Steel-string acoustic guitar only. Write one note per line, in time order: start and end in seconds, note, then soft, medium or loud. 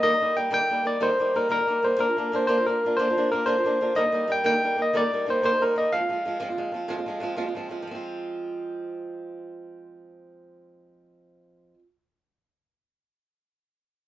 0.02 0.12 D#3 medium
0.02 0.13 G3 medium
0.02 0.13 A#3 medium
0.02 0.12 D#4 medium
0.02 0.10 A#4 medium
0.11 0.21 G3 soft
0.11 0.21 D#4 medium
0.11 0.21 A#4 medium
0.20 0.35 G3 medium
0.20 0.34 A#3 medium
0.20 0.36 D#4 medium
0.20 0.37 A#4 medium
0.35 0.50 G3 medium
0.35 0.50 A#3 medium
0.35 0.51 D#4 medium
0.35 0.51 A#4 medium
0.50 0.61 D#3 medium
0.50 0.61 G3 medium
0.50 0.61 A#3 medium
0.50 0.60 D#4 loud
0.50 0.59 A#4 medium
0.60 0.70 G3 soft
0.60 0.71 D#4 medium
0.60 0.70 A#4 medium
0.70 0.84 G3 medium
0.70 0.82 A#3 medium
0.70 0.85 D#4 medium
0.70 0.84 A#4 medium
0.84 1.00 G3 medium
0.84 0.99 A#3 medium
0.84 1.00 D#4 medium
0.84 1.00 A#4 medium
1.00 1.10 D#3 medium
1.00 1.11 G3 loud
1.00 1.10 A#3 medium
1.00 1.09 D#4 medium
1.00 1.08 A#4 loud
1.09 1.19 G3 soft
1.09 1.19 D#4 medium
1.09 1.19 A#4 medium
1.19 1.34 G3 medium
1.19 1.33 A#3 medium
1.19 1.34 D#4 medium
1.19 1.35 A#4 medium
1.34 1.49 G3 medium
1.34 1.49 A#3 medium
1.34 1.49 D#4 medium
1.34 1.50 A#4 medium
1.49 1.59 D#3 medium
1.49 1.59 G3 medium
1.49 1.59 A#3 medium
1.49 1.58 D#4 medium
1.49 1.58 A#4 medium
1.59 1.67 G3 soft
1.59 1.68 D#4 medium
1.59 1.69 A#4 medium
1.67 1.82 G3 medium
1.67 1.81 A#3 medium
1.67 1.83 D#4 medium
1.67 1.84 A#4 medium
1.82 1.98 G3 medium
1.82 1.96 A#3 medium
1.82 1.98 D#4 medium
1.82 1.98 A#4 medium
1.97 2.08 A#3 medium
1.97 2.08 D4 medium
1.97 2.07 F4 medium
1.97 2.06 A#4 medium
2.07 2.17 D4 medium
2.07 2.17 F4 soft
2.07 2.17 A#4 medium
2.17 2.31 A#3 medium
2.17 2.32 D4 medium
2.17 2.33 F4 medium
2.17 2.33 A#4 medium
2.32 2.47 A#3 medium
2.32 2.47 D4 medium
2.32 2.48 F4 medium
2.32 2.49 A#4 medium
2.48 2.57 A#3 medium
2.48 2.58 D4 loud
2.48 2.57 F4 medium
2.48 2.56 A#4 loud
2.57 2.66 D4 soft
2.57 2.67 F4 medium
2.57 2.67 A#4 medium
2.66 2.82 A#3 medium
2.66 2.83 D4 medium
2.66 2.83 F4 medium
2.66 2.84 A#4 medium
2.84 2.98 A#3 medium
2.84 2.98 D4 medium
2.84 2.99 F4 medium
2.84 2.99 A#4 medium
2.99 3.08 A#3 medium
2.99 3.08 D4 medium
2.99 3.08 F4 loud
2.99 3.06 A#4 medium
3.08 3.16 D4 soft
3.08 3.17 F4 medium
3.08 3.16 A#4 medium
3.17 3.30 A#3 medium
3.17 3.31 D4 medium
3.17 3.32 F4 medium
3.17 3.33 A#4 medium
3.31 3.44 A#3 medium
3.31 3.45 D4 medium
3.31 3.46 F4 medium
3.31 3.47 A#4 medium
3.46 3.55 A#3 medium
3.46 3.56 D4 medium
3.46 3.56 F4 medium
3.46 3.54 A#4 loud
3.56 3.64 D4 soft
3.56 3.65 F4 medium
3.56 3.65 A#4 medium
3.65 3.79 A#3 medium
3.65 3.80 D4 medium
3.65 3.81 F4 medium
3.65 3.81 A#4 medium
3.80 3.94 A#3 medium
3.80 3.96 D4 medium
3.80 3.96 F4 medium
3.80 3.96 A#4 medium
3.95 4.05 D#3 medium
3.95 4.05 G3 medium
3.95 4.05 A#3 medium
3.95 4.04 D#4 medium
3.95 4.02 A#4 medium
4.03 4.11 G3 soft
4.03 4.13 D#4 soft
4.03 4.13 A#4 medium
4.12 4.27 G3 medium
4.12 4.26 A#3 medium
4.12 4.28 D#4 medium
4.12 4.28 A#4 medium
4.27 4.44 G3 medium
4.27 4.43 A#3 medium
4.27 4.44 D#4 medium
4.27 4.44 A#4 medium
4.44 4.53 D#3 medium
4.44 4.54 G3 medium
4.44 4.54 A#3 loud
4.44 4.52 D#4 medium
4.44 4.51 A#4 loud
4.52 4.63 G3 soft
4.52 4.63 D#4 medium
4.52 4.62 A#4 medium
4.62 4.76 G3 soft
4.62 4.75 A#3 medium
4.62 4.77 D#4 medium
4.62 4.78 A#4 medium
4.76 4.93 G3 medium
4.76 4.93 A#3 medium
4.76 4.94 D#4 medium
4.76 4.94 A#4 medium
4.93 5.03 D#3 medium
4.93 5.03 G3 medium
4.93 5.03 A#3 medium
4.93 5.03 D#4 loud
4.93 5.01 A#4 loud
5.02 5.12 G3 medium
5.02 5.12 D#4 medium
5.02 5.11 A#4 medium
5.11 5.27 G3 medium
5.11 5.25 A#3 medium
5.11 5.27 D#4 medium
5.11 5.28 A#4 medium
5.26 5.43 G3 medium
5.26 5.42 A#3 medium
5.26 5.42 D#4 medium
5.26 5.44 A#4 medium
5.42 5.51 D#3 medium
5.42 5.52 G3 medium
5.42 5.52 A#3 medium
5.42 5.51 D#4 medium
5.42 5.50 A#4 medium
5.51 5.60 D#4 medium
5.51 5.61 A#4 medium
5.59 5.75 G3 medium
5.59 5.74 A#3 medium
5.59 5.76 D#4 medium
5.59 5.77 A#4 medium
5.75 5.92 G3 medium
5.75 5.91 A#3 medium
5.75 5.92 D#4 medium
5.75 5.93 A#4 medium
5.92 6.01 F3 medium
5.92 6.01 G#3 medium
5.92 6.00 C4 medium
5.92 5.99 F4 loud
6.00 6.09 G#3 soft
6.00 6.09 C4 soft
6.00 6.09 F4 medium
6.09 6.24 F3 medium
6.09 6.24 G#3 medium
6.09 6.25 C4 medium
6.09 6.26 F4 medium
6.25 6.39 F3 medium
6.25 6.39 G#3 medium
6.25 6.40 C4 medium
6.25 6.41 F4 medium
6.40 6.49 F3 medium
6.40 6.50 G#3 loud
6.40 6.49 C4 medium
6.40 6.49 F4 medium
6.50 6.57 G#3 medium
6.50 6.58 C4 medium
6.50 6.59 F4 medium
6.57 6.71 F3 medium
6.57 6.73 G#3 medium
6.57 6.73 C4 medium
6.57 6.74 F4 medium
6.72 6.87 F3 medium
6.72 6.87 G#3 medium
6.72 6.89 C4 medium
6.72 6.89 F4 medium
6.88 6.98 F3 medium
6.88 6.98 G#3 loud
6.88 6.97 C4 loud
6.88 6.95 F4 loud
6.96 7.07 G#3 medium
6.96 7.07 C4 medium
6.96 7.06 F4 medium
7.06 7.19 F3 medium
7.06 7.20 G#3 medium
7.06 7.22 C4 medium
7.06 7.22 F4 medium
7.20 7.35 F3 medium
7.20 7.36 G#3 medium
7.20 7.37 C4 medium
7.20 7.37 F4 medium
7.36 7.47 F3 medium
7.36 7.47 G#3 medium
7.36 7.46 C4 loud
7.36 7.45 F4 loud
7.46 7.55 G#3 medium
7.46 7.56 C4 medium
7.46 7.56 F4 medium
7.55 7.68 F3 medium
7.55 7.69 G#3 medium
7.55 7.70 C4 medium
7.55 7.71 F4 medium
7.69 7.81 F3 medium
7.69 7.86 G#3 medium
7.69 7.87 C4 medium
7.69 7.87 F4 medium
7.82 11.74 F3 medium
7.87 11.79 G#3 medium
7.87 11.82 C4 loud
7.95 11.86 F4 medium